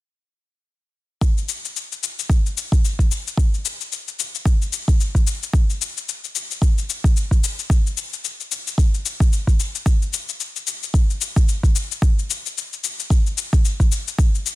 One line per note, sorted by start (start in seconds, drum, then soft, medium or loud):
1.21 kick loud
1.21 shaker soft
1.38 shaker soft
1.49 shaker medium
1.65 shaker soft
1.77 shaker soft
1.92 shaker soft
2.04 shaker medium
2.19 shaker soft
2.30 kick medium
2.30 shaker soft
2.46 shaker soft
2.58 shaker medium
2.72 kick medium
2.72 shaker soft
2.85 shaker soft
2.99 kick soft
2.99 shaker soft
3.12 shaker medium
3.27 shaker soft
3.37 kick loud
3.37 shaker soft
3.54 shaker soft
3.66 shaker medium
3.81 shaker soft
3.92 shaker soft
4.08 shaker soft
4.20 shaker medium
4.35 shaker soft
4.45 kick loud
4.45 shaker soft
4.62 shaker soft
4.73 shaker medium
4.88 kick medium
4.88 shaker soft
5.01 shaker soft
5.15 kick medium
5.15 shaker soft
5.27 shaker medium
5.43 shaker soft
5.53 kick loud
5.53 shaker soft
5.70 shaker soft
5.82 shaker medium
5.97 shaker soft
6.09 shaker soft
6.24 shaker soft
6.36 shaker medium
6.51 shaker soft
6.62 kick medium
6.62 shaker soft
6.78 shaker soft
6.90 shaker medium
7.04 kick medium
7.04 shaker soft
7.17 shaker soft
7.31 kick medium
7.31 shaker soft
7.44 shaker medium
7.59 shaker soft
7.70 kick loud
7.70 shaker soft
7.87 shaker soft
7.98 shaker medium
8.13 shaker soft
8.25 shaker soft
8.40 shaker soft
8.52 shaker medium
8.67 shaker soft
8.78 kick medium
8.78 shaker soft
8.94 shaker soft
9.06 shaker medium
9.20 kick medium
9.20 shaker soft
9.33 shaker soft
9.47 kick medium
9.47 shaker soft
9.60 shaker medium
9.75 shaker soft
9.86 kick loud
9.86 shaker soft
10.02 shaker soft
10.14 shaker medium
10.29 shaker soft
10.40 shaker soft
10.56 shaker soft
10.67 shaker medium
10.83 shaker soft
10.94 kick medium
10.94 shaker soft
11.10 shaker soft
11.21 shaker medium
11.36 kick medium
11.36 shaker soft
11.48 shaker soft
11.63 kick medium
11.63 shaker soft
11.76 shaker medium
11.92 shaker soft
12.02 kick loud
12.02 shaker soft
12.19 shaker soft
12.30 shaker medium
12.46 shaker soft
12.58 shaker soft
12.73 shaker soft
12.84 shaker medium
13.00 shaker soft
13.10 kick medium
13.10 shaker soft
13.27 shaker soft
13.38 shaker medium
13.53 kick medium
13.53 shaker soft
13.65 shaker soft
13.80 kick medium
13.80 shaker soft
13.92 shaker medium
14.08 shaker soft
14.19 kick loud
14.19 shaker soft
14.35 shaker soft
14.46 shaker medium